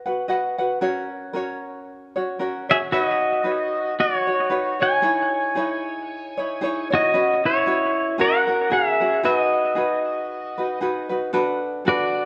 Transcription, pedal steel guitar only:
2.71 2.77 G#4 medium
2.71 2.77 E5 medium
2.92 3.94 F#4 medium
2.92 3.94 D#5 medium
4.00 4.77 F#4 medium
4.00 4.81 C#5 medium
4.82 6.88 C#5 medium
4.82 6.88 G#5 medium
6.94 7.41 F#4 medium
6.94 7.46 D#5 medium
7.45 8.16 E4 medium
7.45 8.22 C#5 medium
8.21 8.69 A#4 medium
8.21 8.74 F#5 medium
8.72 9.20 G#4 medium
8.72 9.25 E5 medium
9.25 10.78 F#4 medium
9.25 10.78 D#5 medium
11.88 12.25 F#4 medium
11.88 12.25 D5 medium

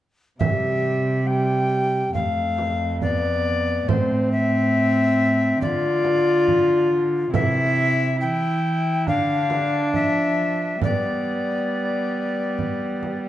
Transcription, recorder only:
0.39 1.28 E5 medium
1.27 2.13 G5 medium
2.14 3.00 F5 medium
3.01 3.90 D5 medium
3.88 4.32 C5 medium
4.32 5.59 E5 medium
5.61 6.88 D5 medium
7.34 8.16 E5 medium
8.21 9.05 G5 medium
9.08 9.93 F5 loud
9.95 10.81 E5 medium
10.83 13.29 D5 medium

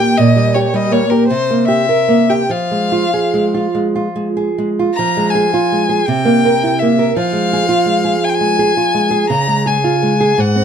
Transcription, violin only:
0.00 0.19 G5 loud
0.17 0.56 D#5 loud
0.54 0.77 C#5 medium
0.76 0.94 D#5 medium
0.93 1.12 C#5 medium
1.10 1.27 A#4 medium
1.28 1.67 C5 medium
1.67 2.31 E5 medium
2.30 2.53 G5 medium
2.51 3.74 F5 medium
4.94 5.32 A#5 loud
5.30 6.07 G#5 medium
6.06 6.81 G5 loud
6.79 7.15 E5 medium
7.17 8.26 F5 loud
8.25 8.31 G#5 medium
8.30 8.36 G5 medium
8.35 9.29 G#5 loud
9.30 9.69 A#5 loud
9.67 10.42 G#5 medium
10.40 10.64 F#5 loud

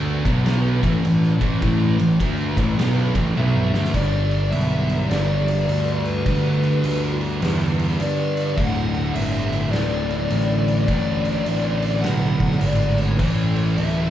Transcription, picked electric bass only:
0.00 0.23 D2 loud
0.25 0.79 B1 medium
0.83 1.03 A1 medium
1.04 1.39 A1 medium
1.41 1.61 A1 loud
1.62 1.97 A1 loud
2.00 2.19 A1 medium
2.20 2.55 D2 loud
2.57 2.77 A1 medium
2.79 3.13 B1 loud
3.15 3.35 A1 loud
3.37 3.71 B1 loud
3.73 3.93 D2 loud
3.94 4.48 G1 medium
4.51 5.06 B1 loud
5.09 5.63 G1 medium
5.68 6.22 D2 medium
6.26 6.80 D2 medium
6.84 7.38 D2 loud
7.42 7.96 E2 loud
8.00 8.54 G2 loud
8.57 9.11 D1 medium
9.15 9.69 G1 loud
9.72 10.26 D1 loud
10.30 10.84 A1 loud
10.88 11.42 A1 loud
11.46 12.00 A1 loud
12.03 12.57 B1 loud
12.62 13.15 G#1 medium
13.19 13.73 A1 medium
13.78 14.10 D1 loud

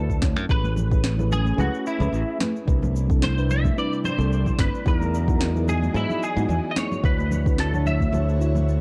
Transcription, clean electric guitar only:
0.00 0.19 A4 medium
0.51 1.32 B4 loud
1.33 1.60 G#4 loud
1.60 1.87 F#4 medium
1.87 2.37 E4 medium
3.24 3.48 C5 loud
3.51 3.78 E5 loud
3.78 4.05 D5 loud
4.05 4.61 C5 loud
4.60 4.87 B4 loud
4.88 5.65 A#4 loud
5.69 5.94 G#4 medium
5.96 6.24 E4 medium
6.24 6.73 G#4 loud
6.71 6.77 D#5 medium
6.78 7.06 C#5 loud
7.05 7.60 B4 medium
7.60 7.85 A4 medium
7.87 8.64 E5 loud

